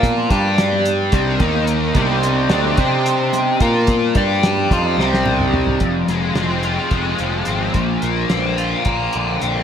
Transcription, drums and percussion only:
0.03 kick medium
0.03 closed hi-hat medium
0.03 high conga medium
0.18 low conga medium
0.30 kick loud
0.30 closed hi-hat medium
0.58 snare loud
0.58 closed hi-hat medium
0.72 high conga medium
0.72 low conga medium
0.85 closed hi-hat medium
1.12 kick loud
1.12 closed hi-hat medium
1.40 kick medium
1.40 closed hi-hat medium
1.40 high conga medium
1.40 low conga medium
1.67 closed hi-hat medium
1.95 kick medium
1.95 closed hi-hat medium
1.95 high conga medium
2.10 low conga medium
2.23 closed hi-hat medium
2.50 snare medium
2.50 closed hi-hat medium
2.64 high conga medium
2.64 low conga medium
2.77 kick loud
2.77 closed hi-hat medium
3.05 closed hi-hat medium
3.05 low conga soft
3.33 closed hi-hat medium
3.33 high conga medium
3.33 low conga medium
3.60 kick loud
3.60 closed hi-hat medium
3.87 kick loud
3.87 closed hi-hat medium
3.87 high conga medium
4.02 low conga medium
4.15 kick loud
4.15 closed hi-hat medium
4.29 low conga soft
4.43 snare loud
4.43 closed hi-hat medium
4.56 high conga medium
4.56 low conga medium
4.71 kick medium
4.71 snare soft
4.71 closed hi-hat medium
5.00 snare medium
5.14 snare medium
5.25 high tom medium
5.25 high conga medium
5.25 low conga medium
5.40 mid tom medium
5.40 high conga soft
5.53 mid tom medium
5.53 low conga medium
5.66 floor tom medium
5.66 low conga medium
5.80 kick medium
5.80 closed hi-hat medium
6.08 snare soft
6.08 closed hi-hat medium
6.35 snare medium
6.35 closed hi-hat medium
6.63 closed hi-hat soft
6.91 kick medium
6.91 closed hi-hat medium
7.18 closed hi-hat soft
7.45 closed hi-hat medium
7.74 kick medium
7.74 closed hi-hat medium
8.02 closed hi-hat medium
8.30 snare medium
8.30 closed hi-hat medium
8.58 closed hi-hat medium
8.85 kick medium
8.85 closed hi-hat medium
9.13 closed hi-hat medium
9.41 closed hi-hat medium

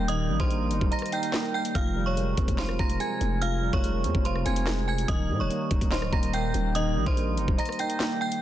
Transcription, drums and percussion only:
0.08 closed hi-hat medium
0.40 kick loud
0.51 closed hi-hat medium
0.71 closed hi-hat medium
0.81 kick loud
0.92 closed hi-hat medium
0.99 cross-stick medium
0.99 closed hi-hat medium
1.06 closed hi-hat medium
1.12 closed hi-hat medium
1.23 closed hi-hat medium
1.33 cross-stick loud
1.33 snare loud
1.33 clap medium
1.65 closed hi-hat medium
1.75 kick loud
1.75 closed hi-hat medium
2.17 closed hi-hat medium
2.37 kick loud
2.37 closed hi-hat medium
2.48 kick loud
2.48 closed hi-hat medium
2.58 snare loud
2.58 clap medium
2.69 cross-stick loud
2.79 kick loud
2.90 closed hi-hat medium
3.00 closed hi-hat medium
3.21 closed hi-hat medium
3.42 closed hi-hat medium
3.73 kick medium
3.84 closed hi-hat medium
4.04 closed hi-hat medium
4.15 kick medium
4.25 closed hi-hat medium
4.36 cross-stick medium
4.46 closed hi-hat medium
4.56 closed hi-hat medium
4.67 cross-stick loud
4.67 snare loud
4.67 clap loud
4.98 closed hi-hat medium
5.08 kick loud
5.08 closed hi-hat medium
5.50 closed hi-hat medium
5.71 kick loud
5.71 closed hi-hat medium
5.81 kick loud
5.81 closed hi-hat medium
5.92 snare loud
5.92 clap medium
6.02 cross-stick loud
6.13 kick loud
6.23 closed hi-hat medium
6.33 closed hi-hat medium
6.54 closed hi-hat medium
6.75 closed hi-hat medium
7.06 kick loud
7.17 closed hi-hat medium
7.37 closed hi-hat medium
7.48 kick loud
7.59 closed hi-hat medium
7.65 cross-stick medium
7.65 closed hi-hat medium
7.72 closed hi-hat medium
7.79 closed hi-hat medium
7.90 closed hi-hat medium
8.00 cross-stick loud
8.00 snare loud
8.00 clap medium
8.32 closed hi-hat medium

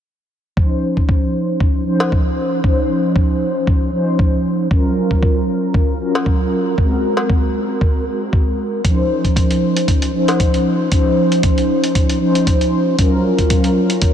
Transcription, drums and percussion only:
0.57 kick loud
0.97 kick medium
1.09 kick loud
1.60 kick loud
2.00 cowbell medium
2.12 kick loud
2.64 kick loud
3.16 kick loud
3.67 kick loud
4.19 kick loud
4.71 kick loud
5.11 kick medium
5.23 kick loud
5.74 kick loud
6.15 cowbell medium
6.26 kick loud
6.78 kick loud
7.17 cowbell medium
7.30 kick loud
7.81 kick loud
8.33 kick loud
8.85 kick loud
8.85 closed hi-hat medium
9.24 kick medium
9.24 closed hi-hat soft
9.36 kick loud
9.36 closed hi-hat medium
9.51 closed hi-hat soft
9.77 closed hi-hat soft
9.88 kick loud
9.88 closed hi-hat medium
10.02 closed hi-hat soft
10.28 closed hi-hat soft
10.28 cowbell medium
10.40 kick loud
10.40 closed hi-hat medium
10.54 closed hi-hat soft
10.92 kick loud
10.92 closed hi-hat medium
11.32 closed hi-hat soft
11.43 kick loud
11.43 closed hi-hat medium
11.58 closed hi-hat soft
11.84 closed hi-hat soft
11.95 kick loud
11.95 closed hi-hat medium
12.10 closed hi-hat soft
12.35 closed hi-hat soft
12.47 kick loud
12.47 closed hi-hat medium
12.61 closed hi-hat soft
12.99 kick loud
12.99 closed hi-hat medium
13.39 kick medium
13.39 closed hi-hat soft
13.50 kick loud
13.50 closed hi-hat medium
13.64 closed hi-hat soft
13.90 closed hi-hat soft
14.02 kick loud
14.02 closed hi-hat medium

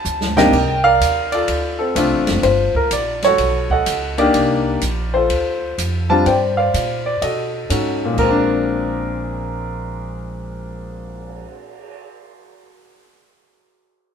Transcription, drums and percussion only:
0.05 hi-hat pedal medium
0.21 snare medium
0.37 snare loud
0.53 kick medium
0.53 crash medium
1.01 kick soft
1.01 hi-hat pedal medium
1.01 ride medium
1.32 ride soft
1.48 kick soft
1.48 ride medium
1.96 kick soft
1.96 hi-hat pedal medium
1.96 ride medium
2.27 snare medium
2.27 ride soft
2.43 kick soft
2.43 ride medium
2.75 kick medium
2.91 kick soft
2.91 hi-hat pedal soft
2.91 ride medium
3.22 snare medium
3.22 ride soft
3.38 kick soft
3.38 ride medium
3.70 kick medium
3.86 kick soft
3.86 hi-hat pedal medium
3.86 ride medium
4.18 ride soft
4.34 kick soft
4.34 ride medium
4.81 kick soft
4.81 hi-hat pedal medium
4.81 ride medium
5.30 kick soft
5.30 ride medium
5.78 kick soft
5.78 hi-hat pedal medium
5.78 ride medium
6.26 kick soft
6.26 ride medium
6.74 kick soft
6.74 hi-hat pedal medium
6.74 ride medium
7.22 kick soft
7.22 ride medium
7.70 kick soft
7.70 hi-hat pedal medium
7.70 ride medium
8.18 kick medium
8.18 crash medium
8.50 cymbal swell soft

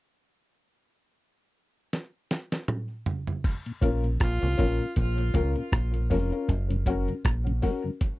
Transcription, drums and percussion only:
1.93 snare medium
2.31 snare medium
2.52 snare medium
2.68 mid tom medium
3.06 floor tom medium
3.27 floor tom medium
3.44 kick loud
3.44 crash medium
3.66 closed hi-hat medium
3.82 kick medium
3.82 closed hi-hat medium
4.04 closed hi-hat soft
4.20 kick loud
4.20 cross-stick loud
4.20 closed hi-hat medium
4.42 closed hi-hat soft
4.58 kick loud
4.58 open hi-hat medium
4.96 kick loud
4.96 closed hi-hat medium
5.18 closed hi-hat medium
5.34 kick medium
5.34 closed hi-hat medium
5.56 closed hi-hat soft
5.72 kick loud
5.72 cross-stick loud
5.72 closed hi-hat medium
5.94 closed hi-hat soft
6.11 kick medium
6.11 open hi-hat medium
6.32 closed hi-hat soft
6.49 kick loud
6.49 closed hi-hat medium
6.70 closed hi-hat medium
6.86 kick medium
6.86 closed hi-hat medium
7.08 closed hi-hat soft
7.25 kick loud
7.25 cross-stick loud
7.25 closed hi-hat medium
7.47 closed hi-hat soft
7.62 kick medium
7.62 open hi-hat medium
8.01 kick loud
8.01 closed hi-hat medium

